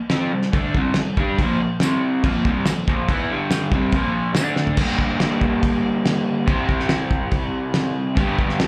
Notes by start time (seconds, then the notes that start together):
0.10 F3 C4 F4, snare, crash
0.32 C3 G3
0.42 snare
0.52 D3 A3 D4, kick, crash
0.75 C3 G3 C4, kick
0.94 C3 G3, snare, crash
1.17 G3 D4 G4, kick
1.39 A#2 F3 A#3, kick, crash
1.61 A#2 F3
1.80 C3 G3 C4, snare, tambourine, crash
2.24 A#2 F3 A#3, kick, crash
2.45 C3 G3 C4, kick
2.66 A#2 F3, snare, tambourine, crash
2.88 A#2 F3 A#3, kick
3.09 E3 B3 E4, kick, crash
3.30 G2 D3 G3
3.51 snare, tambourine, crash
3.72 C3 G3 C4, kick
3.92 A#2 F3, kick, crash
3.97 A#3
4.35 D3 A3 D4, snare, tambourine, crash
4.56 snare
4.67 floor tom
4.77 G2 D3 G3 A#3 D4, kick, crash
4.82 G4
4.99 kick
5.20 snare, crash
5.41 kick
5.63 kick, crash
6.06 snare, crash
6.46 C3 G3 C4 E4 G4 C5, kick, crash
6.69 kick
6.80 snare
6.89 snare, crash
7.11 kick
7.31 kick, crash
7.74 snare, crash
8.15 G2 D3 G3 B3 D4, kick, crash
8.20 G4
8.39 kick
8.49 snare
8.60 snare, crash